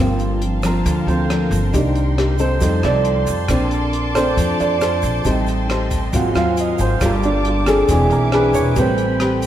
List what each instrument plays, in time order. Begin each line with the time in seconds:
Already playing: upright bass G1, nylon-string guitar G2, violin section A#4 F5
0.00 grand piano F3 A#3 C4, nylon-string guitar F3 A#3 C4, violin section A5 C6
0.19 closed hi-hat, shaker
0.42 closed hi-hat
0.63 nylon-string guitar F3 A#3 C4, grand piano A#4, cross-stick, closed hi-hat, shaker
0.86 upright bass D2, nylon-string guitar D3, kick, closed hi-hat, shaker
1.07 upright bass D2, grand piano F3 A3 A#3 C4 C5, closed hi-hat, shaker
1.30 nylon-string guitar F3 A#3 C4, cross-stick, closed hi-hat
1.51 upright bass G1, closed hi-hat, shaker
1.73 upright bass C2, nylon-string guitar C3 A#3 D#4 G4, grand piano D#3 A#3 D4, violin section C5 G5, kick, closed hi-hat, shaker
1.95 closed hi-hat, shaker
2.18 nylon-string guitar A#3 D#4 G4, cross-stick, closed hi-hat
2.38 nylon-string guitar C4 D#4 A4, grand piano C5, closed hi-hat, shaker
2.60 upright bass F2, nylon-string guitar F3, grand piano G3 A3 D#4, violin section F5 A5, kick, closed hi-hat, shaker
2.83 upright bass C2, nylon-string guitar C4 D#4 A4, grand piano D5, cross-stick, closed hi-hat, shaker
3.05 closed hi-hat
3.27 upright bass F2, closed hi-hat, shaker
3.48 upright bass A#1, nylon-string guitar A#3 D4 A4 C5, grand piano C4 D4, violin section D5 D6, kick, cross-stick, closed hi-hat, shaker
3.71 closed hi-hat, shaker
3.93 closed hi-hat
4.15 grand piano A3 C4 D4 C5, nylon-string guitar D4 A4 C5, cross-stick, closed hi-hat, shaker
4.37 upright bass F2, nylon-string guitar F3, kick, closed hi-hat, shaker
4.60 upright bass F2, grand piano D5, closed hi-hat, shaker
4.81 nylon-string guitar D4 A4 C5, cross-stick, closed hi-hat, shaker
5.02 upright bass A#1, closed hi-hat, shaker
5.24 upright bass A1, grand piano G3 C4 D#4, nylon-string guitar A3 D#4 G4 C5, violin section D#5 G5, kick, closed hi-hat, shaker
5.47 closed hi-hat, shaker
5.70 nylon-string guitar D#4 G4 C5, cross-stick, closed hi-hat
5.91 kick, closed hi-hat, shaker
6.12 upright bass G#1, nylon-string guitar G#2 F#3 C4 F4, grand piano F#3 A#3 C4 F4, violin section A#4 F5 G#5, kick, closed hi-hat, shaker
6.16 grand piano F#5
6.35 upright bass D#2, nylon-string guitar F#3 C4 F4, grand piano F5, cross-stick, closed hi-hat, shaker
6.57 grand piano D#5, closed hi-hat, shaker
6.78 upright bass G#1, grand piano C5, closed hi-hat, shaker
7.01 upright bass G1, nylon-string guitar G3 A#3 F4 A4, grand piano A#3 F4, violin section G5 A5 D6, kick, cross-stick, closed hi-hat, shaker
7.05 grand piano A#4
7.22 grand piano D4, closed hi-hat, shaker
7.45 grand piano F4, closed hi-hat
7.66 nylon-string guitar C4 D4 G#4, grand piano A4, cross-stick, closed hi-hat, shaker
7.87 upright bass E1, nylon-string guitar E3, grand piano G#3 C4 D4, violin section G#4 E5 G#5 D6, kick, closed hi-hat, shaker
7.91 grand piano G#4
8.09 upright bass B1, grand piano A#4, closed hi-hat, shaker
8.32 nylon-string guitar C4 D4 G#4, grand piano B4, cross-stick, closed hi-hat
8.54 upright bass E1, grand piano C#5, closed hi-hat, shaker
8.76 upright bass A1, grand piano G3 C4 B4 C5, nylon-string guitar A3 C4 G4 B4, violin section A4 G5 B5, kick, closed hi-hat, shaker
8.98 closed hi-hat, shaker
9.20 nylon-string guitar C4 G4 B4, cross-stick, closed hi-hat
9.42 closed hi-hat, shaker